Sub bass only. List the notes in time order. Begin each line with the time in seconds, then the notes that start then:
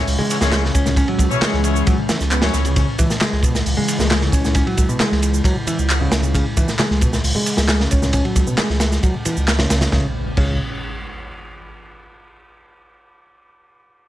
0.07 C#2
0.41 C#2
0.75 C#2
1.19 C#2
1.53 C#2
1.87 C#2
2.20 C#2
2.54 C#2
2.99 C#2
3.33 C#2
3.66 C#2
4.00 C#2
4.32 C#2
4.78 C#2
5.12 C#2
5.44 C#2
5.79 C#2
6.12 C#2
6.57 C#2
6.90 C#2
7.24 C#2
7.58 C#2
7.93 C#2
8.36 C#2
8.69 C#2
9.03 C#2
9.37 C#2
9.71 C#2
9.92 C#2
10.37 C#2